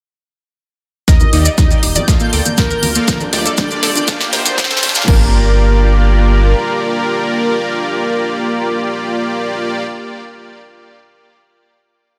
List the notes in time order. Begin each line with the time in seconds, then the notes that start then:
1.08 D#2 A#3 D#4 G4 A#4 D#5 G6, kick, snare, closed hi-hat, riser, maracas
1.20 D#4, closed hi-hat, high conga, maracas
1.33 D#2 A#3 D#4 G4 D5, open hi-hat, cowbell, high woodblock
1.45 D5, closed hi-hat, cowbell, maracas
1.58 D#2 D#4, kick, snare, closed hi-hat, high conga, maracas
1.71 A#3 D#4 G4 D5, closed hi-hat, maracas
1.82 D#1 D#4, open hi-hat, high woodblock
1.95 D5, closed hi-hat, high conga, maracas
2.08 D2 A#3 F4 A4 D5 F5 A5, kick, snare, closed hi-hat, maracas
2.20 A#3, closed hi-hat, maracas
2.33 D2 A#3 F4 A4 D5 G5, open hi-hat
2.46 A#3, closed hi-hat, high conga, maracas
2.57 D2 A#3 F4 A4 A#4 D5, kick, snare, closed hi-hat, maracas
2.71 A#4, closed hi-hat, maracas
2.82 D2 A#3, open hi-hat, high conga
2.95 A#3 F4 A4 F5, closed hi-hat, maracas
3.08 D2 G4, kick, snare, closed hi-hat, maracas
3.20 D4, closed hi-hat, high conga, maracas
3.32 D2 A#3 D4 F4 G4 D5, snare, open hi-hat, cowbell, high woodblock
3.46 A4, closed hi-hat, cowbell, maracas
3.57 D2 D4, kick, snare, closed hi-hat, high conga, maracas
3.71 A#3 D4 F4 G4 D5, closed hi-hat, maracas
3.83 D1 A4, snare, open hi-hat, high woodblock
3.96 D4, closed hi-hat, high conga, maracas
4.07 D2 A#3 D4 F4 G4 F5, kick, snare, closed hi-hat, maracas
4.21 D4, snare, closed hi-hat, maracas
4.33 D2 A#3 F4 G4 A#4 C5 G5, snare, open hi-hat, cowbell
4.46 D4, snare, closed hi-hat, high conga, maracas
4.58 D2 A#3 D4 F4 G4 D5, kick, snare, closed hi-hat, maracas
4.64 snare
4.70 A4, snare, closed hi-hat, maracas
4.77 snare
4.83 D2 D4, snare, open hi-hat, high conga
4.89 snare
4.95 A#3 D4 F4 G4 F5, snare, closed hi-hat, maracas
5.02 snare
5.08 G1 A#3 D4 F4 G4 A#4 D5, kick, crash